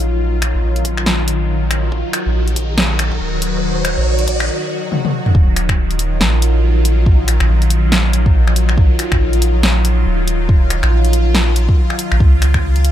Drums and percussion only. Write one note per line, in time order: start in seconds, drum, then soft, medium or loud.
0.42 finger snap medium
0.42 closed hi-hat medium
0.76 closed hi-hat soft
0.85 kick loud
0.85 closed hi-hat medium
0.97 finger snap medium
1.06 snare loud
1.28 closed hi-hat medium
1.71 finger snap medium
1.71 closed hi-hat medium
1.92 kick loud
2.13 finger snap medium
2.13 closed hi-hat medium
2.48 closed hi-hat soft
2.56 kick medium
2.56 closed hi-hat medium
2.78 snare loud
2.99 finger snap medium
2.99 closed hi-hat medium
3.12 kick loud
3.42 closed hi-hat medium
3.85 finger snap medium
3.85 closed hi-hat medium
4.19 closed hi-hat soft
4.28 kick loud
4.28 closed hi-hat medium
4.40 finger snap medium
4.92 high tom medium
5.05 high tom medium
5.26 mid tom medium
5.35 kick loud
5.56 finger snap medium
5.56 closed hi-hat medium
5.69 finger snap medium
5.69 kick medium
5.91 closed hi-hat soft
5.99 closed hi-hat medium
6.21 snare loud
6.42 closed hi-hat medium
6.85 closed hi-hat medium
7.06 kick loud
7.28 finger snap medium
7.28 closed hi-hat medium
7.40 finger snap medium
7.62 closed hi-hat soft
7.70 closed hi-hat medium
7.92 snare loud
8.13 closed hi-hat medium
8.26 kick loud
8.47 finger snap medium
8.56 closed hi-hat medium
8.69 finger snap medium
8.78 kick loud
8.99 finger snap medium
8.99 closed hi-hat medium
9.12 finger snap medium
9.12 kick medium
9.33 closed hi-hat soft
9.42 closed hi-hat medium
9.63 snare loud
9.85 closed hi-hat medium
10.28 closed hi-hat medium
10.49 kick loud
10.70 finger snap medium
10.70 closed hi-hat medium
10.83 finger snap medium
11.05 closed hi-hat soft
11.13 closed hi-hat medium
11.35 snare loud
11.56 closed hi-hat medium
11.69 kick loud
11.90 finger snap medium
11.99 closed hi-hat medium
12.12 finger snap medium
12.20 kick loud
12.42 finger snap medium
12.42 closed hi-hat medium
12.54 finger snap medium
12.54 kick medium
12.76 closed hi-hat soft
12.85 closed hi-hat medium